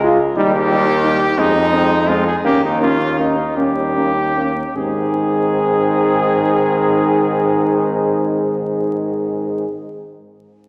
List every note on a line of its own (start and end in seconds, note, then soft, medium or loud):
0.00 0.25 C#2 loud
0.00 0.36 G#3 loud
0.00 0.18 G#3 medium
0.04 0.19 F4 loud
0.36 1.26 D#2 loud
0.36 0.52 G3 loud
0.36 1.37 A#3 loud
0.36 0.52 D#4 loud
0.36 1.41 G4 loud
0.70 0.85 G3 medium
0.70 0.86 D#4 medium
1.04 1.20 G3 medium
1.04 1.20 D#4 medium
1.38 2.32 F2 loud
1.38 2.14 G#3 loud
1.38 1.54 G#3 medium
1.38 1.54 C4 medium
1.38 2.10 D#4 loud
1.73 1.89 G#3 medium
1.73 1.89 C4 medium
2.09 2.25 G#3 loud
2.09 2.25 C4 medium
2.09 2.27 F4 loud
2.28 2.36 G#4 loud
2.45 3.44 D#2 loud
2.45 2.61 A#3 loud
2.45 3.53 A#3 loud
2.45 2.61 C#4 medium
2.45 2.63 G4 loud
2.65 2.81 D#4 loud
2.81 2.98 A#3 medium
2.81 2.97 C#4 medium
2.81 3.19 F4 loud
3.19 3.35 A#3 medium
3.19 3.35 C#4 medium
3.19 3.57 D#4 loud
3.57 4.63 D#2 medium
3.57 4.16 G3 medium
3.57 3.73 A#3 medium
3.57 3.73 C#4 medium
3.57 4.74 G4 loud
3.96 4.13 A#3 medium
3.96 4.12 C#4 medium
4.37 4.53 A#3 medium
4.37 4.53 C#4 medium
4.76 9.66 G#2 loud
4.76 9.67 D#3 medium
4.76 9.67 C4 medium
4.76 9.66 G#4 loud
4.76 9.67 G#4 medium